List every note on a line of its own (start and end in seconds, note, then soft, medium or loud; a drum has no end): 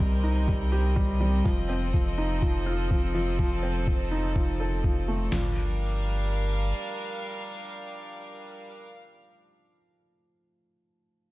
0.00 1.43 C2 medium
0.00 1.46 C3 medium
0.00 0.48 G3 medium
0.00 1.47 C4 medium
0.00 5.32 C4 medium
0.00 0.24 D#4 medium
0.00 0.72 G4 medium
0.00 1.45 A#4 medium
0.00 5.32 D#5 medium
0.00 kick medium
0.24 0.47 D#4 medium
0.48 0.71 G3 medium
0.48 kick medium
0.72 0.95 G4 medium
0.96 1.10 G3 medium
0.96 kick medium
1.21 1.44 G3 medium
1.44 5.30 F1 medium
1.44 1.68 F3 medium
1.44 5.33 F3 medium
1.44 kick medium
1.69 1.92 C4 medium
1.78 5.33 A4 medium
1.94 2.07 F3 medium
1.94 kick medium
2.18 2.41 D#4 medium
2.42 2.65 F3 medium
2.42 kick medium
2.66 2.89 F4 medium
2.91 3.04 F3 medium
2.91 kick medium
3.15 3.37 F3 medium
3.39 3.62 F3 medium
3.39 kick medium
3.63 3.86 C4 medium
3.87 4.01 F3 medium
3.87 kick medium
4.11 4.34 D#4 medium
4.35 4.58 F3 medium
4.35 kick medium
4.60 4.74 A4 medium
4.84 5.07 F3 medium
4.84 kick medium
5.08 5.31 A3 medium
5.32 6.73 G1 medium
5.32 5.55 F3 medium
5.32 8.74 G3 medium
5.32 snare medium
5.32 floor tom medium
5.32 open hi-hat medium
5.40 8.82 D4 medium
5.46 8.88 A#4 medium
5.54 8.95 F5 medium